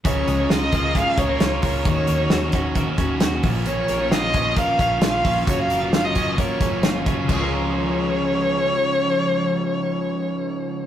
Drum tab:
CC |--------|--------|--------|--------|
HH |xxxxxxxo|xxxxxxxo|xxxxxxxo|xxxxxxxx|
SD |--o---o-|--o---o-|--o---o-|--o---o-|
BD |o--ooo-o|o--ooo-o|---ooo-o|o--ooo-o|

CC |x-------|--------|
HH |--------|--------|
SD |--------|--------|
BD |o-------|--------|